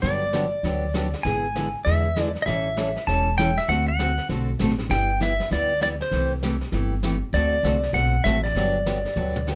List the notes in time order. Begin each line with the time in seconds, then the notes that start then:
0.02 G1 D3 F#3 B3 D4 G4 D5, brush sweep, snare
0.33 D3 F#3 B3 D4 G4, snare, hi-hat pedal
0.63 D2 D3 F#3 B3 D4 G4, brush sweep, snare
0.94 D3 F#3 B3 D4 G4, snare, hi-hat pedal
1.13 snare
1.23 G#1 D3 G#3 B3 E4 G#4 G#5, brush sweep, snare
1.55 D3 G#3 B3 E4 G#4, snare, hi-hat pedal
1.85 E2 D3 G#3 B3 E4 G#4 E5, brush sweep, snare
2.16 D3 G#3 B3 E4 G#4, snare, hi-hat pedal
2.35 snare
2.42 A1 D#5 E5
2.47 E3 G3 C#4 E4 A4, brush sweep, snare
2.77 E3 G3 C#4 E4 A4, snare, hi-hat pedal
2.96 snare
3.07 E1 E3 G3 C#4 E4 A4 A5, brush sweep, snare
3.38 E3 G3 C#4 E4 A4 G5, snare, hi-hat pedal
3.58 E5, snare
3.68 D2 D3 A3 C4 F#4 A4 F#5, brush sweep, snare
3.88 F#5
3.99 D3 A3 C4 F#4 A4, snare, hi-hat pedal
4.18 snare
4.29 B1 D3 A3 C4 F#4 A4, brush sweep, snare
4.59 A1 D3 A3 C4 F#4 A4, snare, hi-hat pedal
4.69 snare
4.78 snare
4.80 snare
4.89 G1 G3 B3 E4 G4 G5, brush sweep, snare
5.20 G3 B3 E4 G4 E5, snare, hi-hat pedal
5.40 snare
5.51 D2 G3 B3 E4 G4 D5, brush sweep, snare
5.81 G3 B3 E4 G4 D5, snare, hi-hat pedal
6.00 C5, snare
6.11 C2 C3 E3 A3 E4 G4, brush sweep, snare
6.43 C3 E3 A3 E4 G4, snare, hi-hat pedal
6.61 snare
6.72 G1 C3 E3 A3 E4 G4, brush sweep, snare
7.03 C3 E3 A3 E4 G4, snare, hi-hat pedal
7.33 D2 D3 A3 C4 F#4 A4 D5, brush sweep, snare
7.63 C2 D3 A3 C4 F#4 A4, snare, hi-hat pedal
7.83 snare
7.93 B1 D3 A3 C4 F#4 A4 F#5, brush sweep, snare
8.24 A1 D3 A3 C4 F#4 A4 E5, snare, hi-hat pedal
8.44 D5, snare
8.55 G1 D3 F#3 B3 D4 G4, brush sweep, snare
8.86 D3 F#3 B3 D4 G4, snare, hi-hat pedal
9.05 snare
9.16 D2 D3 F#3 B3 D4 G4, mid tom
9.36 mid tom
9.47 D3 F#3 B3 D4 G4, snare, hi-hat pedal